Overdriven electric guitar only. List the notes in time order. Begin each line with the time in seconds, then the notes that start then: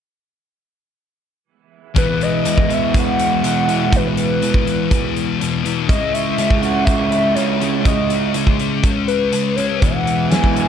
1.95 E3 G#3 B3 E4
5.88 C#3 G#3 C#4 E4
9.80 E3 G#3 B3 E4